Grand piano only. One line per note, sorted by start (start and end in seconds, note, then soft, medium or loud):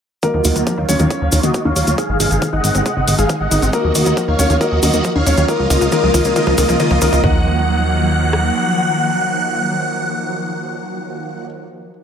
0.23 0.80 A#3 medium
0.23 0.80 A#4 medium
0.89 1.46 C#4 medium
0.89 1.46 C#5 medium
3.73 4.30 A#3 medium
3.73 4.30 A#4 medium
4.39 4.59 C#4 medium
4.39 4.59 C#5 medium
4.61 5.18 A#3 medium
4.61 5.18 A#4 medium
5.27 5.47 C#4 medium
5.27 5.47 C#5 medium
5.48 5.91 A#3 medium
5.48 5.91 A#4 loud
5.92 6.34 A#3 medium
5.92 6.34 A#4 loud
6.36 6.56 A#3 medium
6.36 6.56 A#4 loud
6.58 6.78 A#3 medium
6.58 6.78 A#4 loud
6.80 7.00 A#3 medium
6.80 7.00 A#4 loud
7.02 7.22 A#3 medium
7.02 7.22 A#4 loud
7.24 11.46 D#5 loud